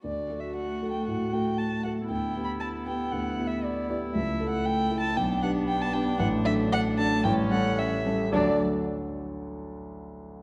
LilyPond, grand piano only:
\new Staff \with { instrumentName = "Grand piano" } { \time 4/4 \key d \major \tempo 4 = 116 d,8 <a fis' a'>4 <a fis' a'>8 a,8 <a fis' a'>4 <a fis' a'>8 | d,8 <b e' g'>4 <b e' g'>8 d,8 <b e' g'>4 <b e' g'>8 | cis,8 <a e' a'>4 <a e' a'>8 b,,8 <b d' g'>4 <b d' g'>8 | a,,8 <fis d' a'>4 <fis d' a'>8 a,,8 <g cis' a'>4 <g cis' a'>8 |
<d, d fis d' a' d''>8 r2. r8 | }